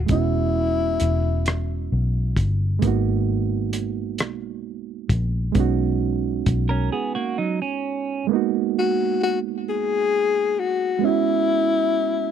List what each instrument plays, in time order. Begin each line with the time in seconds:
0.06 fingered electric bass E1, reed electric piano G#3 B3 C#4, kick, closed hi-hat
0.12 tenor saxophone E4, reed electric piano E4 F#4
1.00 fingered electric bass E1, closed hi-hat
1.46 cross-stick, closed hi-hat
1.92 fingered electric bass B1
2.37 fingered electric bass G1, kick, closed hi-hat
2.79 fingered electric bass G#1, reed electric piano G#3 A#3, kick, closed hi-hat
2.84 reed electric piano B3 D#4 F#4
3.73 closed hi-hat
4.18 fingered electric bass B1, cross-stick, closed hi-hat
5.09 fingered electric bass A#1, kick, closed hi-hat
5.52 fingered electric bass B1, reed electric piano G#3 B3, kick, closed hi-hat
5.56 reed electric piano C#4 D#4 F#4
6.46 fingered electric bass B1, kick, closed hi-hat
6.69 clean electric guitar C#4 A#4
6.92 clean electric guitar B3 G#4
7.15 clean electric guitar A#3 F#4
7.38 clean electric guitar F#3 D#4
7.62 clean electric guitar C#4
8.27 reed electric piano G#3 A#3
8.31 reed electric piano B3 D#4
8.35 reed electric piano F#4
8.79 tenor saxophone F#4
9.23 tenor saxophone F#4
9.69 tenor saxophone G#4
10.59 tenor saxophone F#4
10.99 reed electric piano G#3 B3
11.03 reed electric piano C#4 E4 F#4, tenor saxophone E4